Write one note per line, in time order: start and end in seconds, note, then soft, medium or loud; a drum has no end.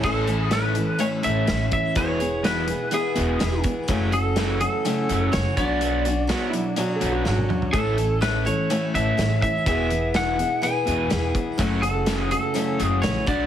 0.03 0.77 A1 medium
0.03 0.27 A2 medium
0.03 0.28 A2 medium
0.03 0.28 E3 medium
0.03 0.27 E3 medium
0.03 0.27 A3 medium
0.03 0.29 A3 medium
0.03 0.29 C#4 medium
0.03 0.29 E4 medium
0.03 0.41 A4 medium
0.03 0.28 A4 medium
0.03 kick loud
0.03 crash medium
0.27 0.50 A2 medium
0.27 0.50 E3 medium
0.27 0.50 A3 soft
0.27 0.51 C#4 soft
0.27 0.52 E4 soft
0.27 0.53 A4 soft
0.27 closed hi-hat medium
0.41 0.52 G#4 medium
0.51 0.75 A2 medium
0.51 0.75 E3 medium
0.51 0.76 A3 medium
0.51 0.75 A3 medium
0.51 0.76 C#4 medium
0.51 0.76 E4 medium
0.51 0.75 A4 medium
0.51 1.02 B4 medium
0.51 snare loud
0.51 closed hi-hat medium
0.75 0.98 A2 medium
0.75 0.98 E3 medium
0.75 0.98 A3 soft
0.75 0.99 C#4 soft
0.75 0.99 E4 soft
0.75 0.99 A4 soft
0.75 closed hi-hat medium
0.98 1.47 A2 medium
0.98 1.22 A2 medium
0.98 1.96 E3 medium
0.98 1.22 E3 medium
0.98 1.47 A3 medium
0.98 1.47 C#4 medium
0.98 1.49 E4 medium
0.98 1.49 A4 medium
0.98 1.07 C#5 medium
0.98 closed hi-hat medium
1.23 1.43 A1 medium
1.23 1.46 A2 medium
1.23 1.46 E3 medium
1.23 1.47 A3 loud
1.23 1.72 E5 loud
1.23 closed hi-hat medium
1.47 1.67 A1 medium
1.47 1.69 A2 medium
1.47 1.70 E3 medium
1.47 1.96 A3 medium
1.47 1.97 C#4 medium
1.47 1.97 E4 medium
1.47 1.98 A4 medium
1.47 snare loud
1.47 closed hi-hat medium
1.71 1.94 A2 medium
1.71 1.94 E3 medium
1.71 1.97 E5 medium
1.71 kick medium
1.71 closed hi-hat medium
1.95 2.69 E1 medium
1.95 2.19 E2 medium
1.95 2.19 B2 medium
1.95 2.20 E3 medium
1.95 2.19 E3 medium
1.95 2.21 B3 medium
1.95 2.21 E4 medium
1.95 2.19 G#4 medium
1.95 2.46 C#5 medium
1.95 kick loud
1.95 closed hi-hat medium
2.20 2.43 E2 medium
2.20 2.43 B2 medium
2.20 2.46 B3 soft
2.20 2.45 E4 soft
2.20 2.45 G#4 soft
2.20 closed hi-hat medium
2.44 2.67 E2 medium
2.44 2.67 B2 medium
2.44 2.67 E3 medium
2.44 2.69 E3 medium
2.44 2.70 B3 medium
2.44 2.68 E4 medium
2.44 2.94 B4 medium
2.44 snare loud
2.44 closed hi-hat medium
2.48 2.68 G#4 medium
2.68 2.90 E2 medium
2.68 2.91 B2 medium
2.68 2.92 B3 soft
2.68 2.93 E4 soft
2.68 2.93 G#4 soft
2.68 closed hi-hat medium
2.91 3.14 E2 medium
2.91 3.14 B2 medium
2.91 3.38 E3 medium
2.91 3.39 B3 medium
2.91 3.40 E4 medium
2.91 3.62 G#4 medium
2.91 3.41 G#4 medium
2.91 closed hi-hat medium
3.15 3.36 E1 medium
3.15 3.39 E2 medium
3.15 3.39 B2 medium
3.15 3.39 E3 medium
3.15 closed hi-hat medium
3.39 3.60 E1 loud
3.39 3.62 E2 medium
3.39 3.63 B2 medium
3.39 3.88 E3 medium
3.39 3.89 B3 medium
3.39 3.89 E4 medium
3.39 3.90 G#4 medium
3.39 snare loud
3.39 closed hi-hat medium
3.64 3.87 E2 medium
3.64 3.87 B2 medium
3.64 kick medium
3.64 closed hi-hat medium
3.88 4.62 F#1 medium
3.88 4.13 F#2 medium
3.88 4.11 F#2 medium
3.88 4.13 C#3 medium
3.88 4.12 C#3 medium
3.88 4.13 E3 medium
3.88 4.12 F#3 medium
3.88 4.13 A3 medium
3.88 4.13 C#4 loud
3.88 4.12 F#4 medium
3.88 kick loud
3.88 closed hi-hat medium
4.12 4.35 F#2 medium
4.12 4.35 C#3 medium
4.12 4.35 E3 soft
4.12 4.36 A3 soft
4.12 4.38 C#4 soft
4.12 4.37 F#4 soft
4.12 4.60 A4 medium
4.12 closed hi-hat medium
4.36 4.59 F#2 medium
4.36 4.60 C#3 medium
4.36 4.61 E3 medium
4.36 4.60 F#3 loud
4.36 4.61 A3 medium
4.36 4.61 C#4 medium
4.36 4.60 F#4 medium
4.36 snare loud
4.36 closed hi-hat medium
4.61 4.83 F#2 medium
4.61 4.83 C#3 medium
4.61 4.85 E3 soft
4.61 4.85 A3 soft
4.61 4.86 C#4 soft
4.61 4.85 F#4 soft
4.61 5.35 A4 medium
4.61 closed hi-hat medium
4.85 5.33 F#2 medium
4.85 5.07 F#2 medium
4.85 5.33 C#3 medium
4.85 5.07 C#3 medium
4.85 5.31 E3 medium
4.85 5.32 A3 medium
4.85 5.33 C#4 medium
4.85 5.33 F#4 medium
4.85 closed hi-hat medium
5.09 5.28 F#1 medium
5.09 5.32 F#2 medium
5.09 5.32 C#3 medium
5.09 5.32 F#3 loud
5.09 closed hi-hat medium
5.32 5.43 F#1 medium
5.32 5.55 F#2 medium
5.32 5.55 C#3 medium
5.32 5.57 E3 medium
5.32 5.57 A3 medium
5.32 5.57 C#4 medium
5.32 5.57 F#4 medium
5.32 5.57 C#5 medium
5.32 snare loud
5.32 closed hi-hat medium
5.57 6.31 B1 medium
5.57 5.80 B2 medium
5.57 6.06 B2 soft
5.57 5.80 F#3 medium
5.57 6.06 F#3 medium
5.57 5.80 B3 loud
5.57 6.06 D4 medium
5.57 6.05 F#4 medium
5.57 6.98 D5 medium
5.57 kick medium
5.57 closed hi-hat medium
5.81 6.04 B2 medium
5.81 6.04 F#3 medium
5.81 6.04 B3 medium
5.81 closed hi-hat medium
6.05 6.27 B2 medium
6.05 6.28 F#3 medium
6.05 6.30 C#4 soft
6.05 6.28 D4 soft
6.05 6.29 F#4 soft
6.05 closed hi-hat medium
6.27 6.52 B2 medium
6.27 6.77 F#3 medium
6.27 6.52 F#3 medium
6.27 6.52 B3 medium
6.27 6.76 D4 medium
6.27 6.45 F#4 medium
6.27 6.77 F#4 medium
6.27 snare medium
6.27 closed hi-hat medium
6.49 6.63 E4 medium
6.53 6.75 B2 medium
6.53 6.75 F#3 medium
6.53 closed hi-hat medium
6.76 7.25 B2 medium
6.76 6.99 B2 medium
6.76 6.99 F#3 medium
6.76 7.24 F#3 medium
6.76 7.26 C#4 medium
6.76 7.26 D4 medium
6.76 7.26 F#4 medium
6.76 6.94 F#4 medium
6.76 closed hi-hat medium
6.95 7.10 A4 medium
7.01 7.20 B1 medium
7.01 7.24 B2 medium
7.01 7.24 F#3 medium
7.01 7.25 B3 medium
7.01 closed hi-hat medium
7.12 7.27 F#4 medium
7.22 7.44 G#1 medium
7.22 7.47 B2 medium
7.22 7.73 F#3 medium
7.22 7.47 F#3 medium
7.22 7.25 F4 medium
7.22 snare medium
7.27 7.73 C#4 medium
7.27 7.74 D4 medium
7.27 7.74 F#4 medium
7.27 7.62 F#4 medium
7.38 high tom medium
7.49 7.71 B2 medium
7.49 7.71 F#3 medium
7.49 mid tom medium
7.62 floor tom medium
7.72 8.47 A1 medium
7.72 7.96 A2 medium
7.72 7.98 A2 medium
7.72 7.96 E3 medium
7.72 7.98 E3 medium
7.72 7.96 A3 medium
7.72 7.98 A3 medium
7.72 7.98 C#4 medium
7.72 7.97 E4 medium
7.72 8.22 A4 medium
7.72 7.96 A4 medium
7.72 kick loud
7.72 closed hi-hat medium
7.97 8.19 A2 medium
7.97 8.20 E3 medium
7.97 8.19 A3 soft
7.97 8.21 C#4 soft
7.97 8.22 E4 soft
7.97 8.22 A4 soft
7.97 closed hi-hat medium
8.21 8.44 A2 medium
8.21 8.45 E3 medium
8.21 8.45 A3 medium
8.21 8.46 C#4 medium
8.21 8.45 E4 medium
8.21 8.44 A4 medium
8.21 8.47 B4 medium
8.21 snare loud
8.21 closed hi-hat medium
8.45 8.68 A2 medium
8.45 8.68 E3 medium
8.45 8.69 A3 soft
8.45 8.69 C#4 soft
8.45 8.70 E4 soft
8.45 8.70 A4 soft
8.45 8.95 C#5 medium
8.45 closed hi-hat medium
8.70 9.18 A2 medium
8.70 8.92 A2 medium
8.70 9.66 E3 medium
8.70 8.92 E3 medium
8.70 9.16 A3 medium
8.70 9.17 C#4 medium
8.70 9.18 E4 medium
8.70 9.18 A4 medium
8.70 closed hi-hat medium
8.94 9.13 A1 medium
8.94 9.17 A2 medium
8.94 9.17 E3 medium
8.94 9.18 A3 medium
8.94 9.41 E5 loud
8.94 closed hi-hat medium
9.17 9.36 A1 medium
9.17 9.40 A2 medium
9.17 9.41 E3 medium
9.17 9.66 A3 medium
9.17 9.66 C#4 medium
9.17 9.67 E4 medium
9.17 9.67 A4 medium
9.17 snare loud
9.17 closed hi-hat medium
9.42 9.65 A2 medium
9.42 9.65 E3 medium
9.42 9.65 E5 medium
9.42 kick medium
9.42 closed hi-hat medium
9.66 10.40 E1 medium
9.66 9.89 E2 medium
9.66 9.90 B2 medium
9.66 10.14 E3 medium
9.66 9.90 E3 medium
9.66 10.14 B3 medium
9.66 10.15 E4 medium
9.66 10.15 G#4 medium
9.66 10.16 E5 medium
9.66 kick loud
9.66 closed hi-hat medium
9.90 10.12 E2 medium
9.90 10.12 B2 medium
9.90 closed hi-hat medium
10.14 10.37 E2 medium
10.14 10.38 B2 medium
10.14 10.38 E3 medium
10.14 10.39 B3 medium
10.14 10.39 E4 medium
10.14 10.38 G#4 medium
10.14 10.63 F#5 medium
10.14 snare loud
10.14 closed hi-hat medium
10.39 10.60 E2 medium
10.39 10.61 B2 medium
10.39 10.62 B3 soft
10.39 10.62 E4 soft
10.39 10.63 G#4 soft
10.39 closed hi-hat medium
10.62 10.84 E2 medium
10.62 10.84 B2 medium
10.62 11.09 E3 medium
10.62 11.10 B3 medium
10.62 11.11 E4 medium
10.62 11.11 G#4 medium
10.62 11.31 G#5 medium
10.62 closed hi-hat medium
10.86 11.06 E1 medium
10.86 11.09 E2 medium
10.86 11.09 B2 medium
10.86 11.10 E3 loud
10.86 closed hi-hat medium
11.10 11.30 E1 medium
11.10 11.32 E2 medium
11.10 11.33 B2 medium
11.10 11.58 E3 medium
11.10 11.59 B3 medium
11.10 11.59 E4 medium
11.10 11.60 G#4 medium
11.10 snare loud
11.10 closed hi-hat medium
11.35 11.56 E2 medium
11.35 11.57 B2 medium
11.35 kick medium
11.35 closed hi-hat medium
11.58 12.32 F#1 medium
11.58 11.82 F#2 medium
11.58 11.81 F#2 medium
11.58 11.81 C#3 medium
11.58 11.83 C#3 medium
11.58 11.83 E3 medium
11.58 11.82 F#3 medium
11.58 11.83 A3 medium
11.58 11.82 C#4 medium
11.58 11.81 F#4 loud
11.58 kick loud
11.58 closed hi-hat medium
11.82 12.05 F#2 medium
11.82 12.05 C#3 medium
11.82 12.06 E3 soft
11.82 12.08 A3 soft
11.82 12.07 C#4 soft
11.82 12.07 F#4 medium
11.82 12.19 A4 medium
11.82 closed hi-hat medium
12.06 12.30 F#2 medium
12.06 12.30 C#3 loud
12.06 12.31 E3 medium
12.06 12.30 F#3 medium
12.06 12.31 A3 medium
12.06 12.30 C#4 medium
12.06 12.29 F#4 medium
12.06 snare loud
12.06 closed hi-hat medium
12.19 12.30 G#4 medium
12.30 12.53 F#2 medium
12.30 12.53 C#3 medium
12.30 12.53 E3 soft
12.30 12.54 A3 soft
12.30 12.54 C#4 soft
12.30 12.55 F#4 soft
12.30 12.83 A4 medium
12.30 closed hi-hat medium
12.54 13.02 F#2 medium
12.54 12.77 F#2 medium
12.54 13.03 C#3 medium
12.54 12.77 C#3 medium
12.54 13.01 E3 medium
12.54 13.01 A3 medium
12.54 13.02 C#4 medium
12.54 13.03 F#4 medium
12.54 closed hi-hat medium
12.79 12.98 F#1 medium
12.79 13.02 F#2 medium
12.79 13.02 C#3 loud
12.79 13.02 F#3 medium
12.79 13.06 G#4 medium
12.79 closed hi-hat medium
13.02 13.12 A#1 medium
13.02 13.25 F#2 medium
13.02 13.25 C#3 medium
13.02 13.26 E3 medium
13.02 13.27 A3 medium
13.02 13.27 C#4 medium
13.02 13.25 F#4 medium
13.02 13.27 C#5 medium
13.02 snare loud
13.02 closed hi-hat medium
13.26 13.46 B1 medium
13.26 13.46 B2 medium
13.26 13.46 F#3 soft
13.26 13.46 F#3 medium
13.26 13.46 B3 medium
13.26 13.46 D4 medium
13.26 13.46 F#4 medium
13.26 13.46 D5 medium
13.26 kick loud
13.26 closed hi-hat medium